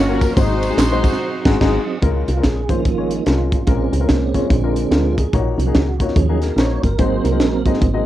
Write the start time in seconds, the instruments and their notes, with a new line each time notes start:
Already playing: fm bass G1, tonewheel organ F#3 C#4 A#4 F5, string section A#3 C#4 F4 F#4
0.09 upright piano A#3 F4 F#4 C#5
0.21 string section A#4, kick, ride, tambourine
0.36 fm bass G#1, upright piano G#2 G#3 D#4 F#4 C5, tonewheel organ F#3 C4 D#4 G#4, string section D#4 F#4 C5, kick, ride, tambourine
0.63 ride, tambourine
0.70 upright piano G#3 D#4 F#4 G#4
0.78 fm bass A#1, snare, clap, ride, tambourine
0.91 upright piano G#3 D#4 F#4 C5
1.04 kick, ride, tambourine
1.12 snare
1.45 fm bass G#1, upright piano G#3 D#4 F#4 G#4, kick, snare, crash
1.61 fm bass G#1, upright piano G#3 D#4 F#4 G#4, tonewheel organ D#5, kick, snare, crash
2.02 fm bass C#2, upright piano C#3 G#3 C#4 F4 A#4, tonewheel organ F4, kick, closed hi-hat
2.28 fm bass C2, closed hi-hat
2.37 upright piano G#3 C#4 F4 A#4
2.44 fm bass A#1, tonewheel organ G#4, kick, snare, closed hi-hat
2.69 tonewheel organ D#3 F3 A#3 F4, upright piano G#3 C#4 F4 C5, kick, closed hi-hat
2.85 fm bass G#1, kick, closed hi-hat
2.97 upright piano G#3 C#4 F4 C#5
3.11 tonewheel organ D#4, closed hi-hat
3.26 fm bass C2, upright piano G#3 C#4 F4 A#4, tonewheel organ F4, snare, closed hi-hat
3.52 fm bass A1, tonewheel organ F4, kick, closed hi-hat
3.67 fm bass A#1, upright piano A#2 G#3 C#4 F4 A#4, tonewheel organ G#3 C4 C#4, kick, closed hi-hat
3.93 fm bass C#2, closed hi-hat
4.00 upright piano G#3 C#4 F4 A#4
4.09 fm bass C2, tonewheel organ A#3, kick, snare, closed hi-hat
4.34 upright piano G#3 C#4 F4 C#5, kick, closed hi-hat
4.45 tonewheel organ C#4
4.50 fm bass A#1, upright piano A#2, tonewheel organ D3 G#3 C4 D4, kick, closed hi-hat
4.63 upright piano G#3 D4 F4 A#4
4.76 closed hi-hat
4.91 fm bass D2, upright piano G#3 D4 F4 A#4, tonewheel organ F4, snare, closed hi-hat
5.18 tonewheel organ G#4, kick, closed hi-hat
5.33 fm bass A#1, upright piano A#2 A#3 D#4 F#4 C#5, tonewheel organ F#4, kick, closed hi-hat
5.58 fm bass C2, tonewheel organ F3 F#3 C#4, closed hi-hat
5.66 upright piano A#3 D#4 F#4 G#4
5.75 fm bass C#2, kick, snare, closed hi-hat
6.00 upright piano A#3 D#4 F#4 C#5, tonewheel organ F4, kick, closed hi-hat
6.08 snare
6.15 fm bass D#2, tonewheel organ F3 F#3 C#4 G#4, kick, closed hi-hat
6.29 upright piano A#3 D#4 F#4 G#4
6.42 tonewheel organ A#4, snare, closed hi-hat
6.56 fm bass A#1, upright piano A#3 D#4 F#4 C5, tonewheel organ C#5, snare, closed hi-hat
6.83 fm bass G1, tonewheel organ A#4, kick, closed hi-hat
6.99 fm bass G#1, upright piano G#2 G#3 D#4 F#4 C5, tonewheel organ F#3 A#3 C4 C5, kick, closed hi-hat
7.24 fm bass C2, tonewheel organ A#4, closed hi-hat
7.32 upright piano G#3 D#4 F#4 C5
7.40 fm bass A#1, snare, closed hi-hat
7.66 upright piano G#3 D#4 F#4 D#5, kick, closed hi-hat
7.74 snare
7.81 fm bass G#1, tonewheel organ F#3 A#3 C4, kick, closed hi-hat
7.94 upright piano G#3 D#4 F#4 D#5